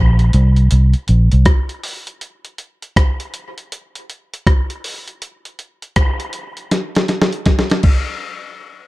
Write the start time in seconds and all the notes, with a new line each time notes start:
Already playing: A#1
0.19 closed hi-hat
0.33 C2, closed hi-hat
0.56 closed hi-hat
0.71 C2, closed hi-hat
0.94 closed hi-hat
1.08 A#1, closed hi-hat
1.32 C2, closed hi-hat
1.45 kick, cross-stick, closed hi-hat
1.69 closed hi-hat
1.83 open hi-hat
2.07 closed hi-hat
2.21 closed hi-hat
2.45 closed hi-hat
2.58 closed hi-hat
2.82 closed hi-hat
2.96 kick, cross-stick, closed hi-hat
3.20 closed hi-hat
3.34 closed hi-hat
3.58 closed hi-hat
3.72 closed hi-hat
3.95 closed hi-hat
4.10 closed hi-hat
4.34 closed hi-hat
4.47 kick, cross-stick, closed hi-hat
4.70 closed hi-hat
4.84 open hi-hat
5.08 closed hi-hat
5.22 closed hi-hat
5.45 closed hi-hat
5.59 closed hi-hat
5.82 closed hi-hat
5.96 kick, cross-stick, closed hi-hat
6.20 closed hi-hat
6.33 closed hi-hat
6.57 closed hi-hat
6.71 snare, closed hi-hat
6.95 snare, closed hi-hat
7.08 snare, closed hi-hat
7.22 snare
7.33 closed hi-hat
7.46 kick, snare, closed hi-hat
7.59 snare
7.70 snare, closed hi-hat
7.83 kick, crash